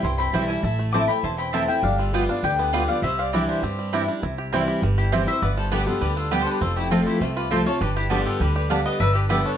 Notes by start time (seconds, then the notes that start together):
Already playing: C4 G4
0.03 C2 G2 E4 G5 C6
0.18 C4 G5 B5
0.33 B1 E3 G3 C4 E4 G4 C5 E5 G5 A5
0.48 E4 E5 G#5
0.63 A1 A2 E4 E5 A5
0.79 A3
0.93 E3 A3 C4 E4 C5 A5 D6
1.08 C4 G4 G5 B5
1.23 E1 E2 E4 A5 C6
1.38 C4 G5 B5
1.53 E3 A3 C4 E4 G4 C5 E5 A5
1.68 C4 E4 E5 G5
1.83 G1 G3 D4 D5 F5
1.98 G3 F4 A4
2.13 G3 B3 F4 B4 D5 G5
2.29 B3 D4 F4 D5 F5
2.43 D2 D3 G4 D5 G5
2.59 B3 G4 B4
2.73 G3 B3 F4 B4 D5 G5
2.88 B3 F4 D5 F5
3.02 C2 C3 G3 C5 E5
3.19 C4 D5 F5
3.33 E3 G3 C4 D4 E4 G4 D5 G5
3.48 D3 G4 C5
3.63 G2 C4
3.79 G3
3.93 E3 G3 C4 D4 E4 D5 G5
4.08 G3 D4 E4
4.23 C2 C3 E4
4.38 G4
4.52 E3 G3 C4 E4 C5 G5
4.68 G4
4.82 G1 G2 G3
4.98 E4 G4
5.12 E3 G3 C4 E4 G4 C5 G5
5.27 C4 E4 C5 E5
5.42 G1 G2 B3 B4 D5
5.57 G3 A4 C5
5.71 D3 G3 B3 D4 G4 B4 D5 G5
5.87 B3 F4 G4 A4
6.01 D2 D3 G3 G4 B4
6.17 D4 F4 A4
6.31 D3 G3 B3 G4 B4 D5 G5
6.42 A4 C5
6.47 D4
6.51 G4 B4
6.61 F1 F2 C4 F4 A4
6.76 A3 E4 G4
6.91 F3 A3 C4 F4 C5 A5
7.06 C4 E4 G4
7.21 C2 C3 A3 F4 A4
7.37 F4 G4 B4
7.50 F3 A3 C4 F4 G4 A4 C5 A5
7.66 C4 F4 A4 C#5
7.81 G1 G2 D4 G4 B4
7.96 E4 G4
8.10 D3 G3 B3 D4 F4 G4 D5 A5
8.25 F4 G4 A4
8.40 D2 D3 G3 G4 B4
8.55 G4 B4 D5
8.70 D3 G3 B3 D4 G4 D5 F5 A5
8.86 B3 B4 D#5
9.00 G1 G2 D4 B4 E5
9.14 G4 B4
9.29 D3 G3 B3 G4 B4 D5 E5 G5
9.45 D4 A4 C#5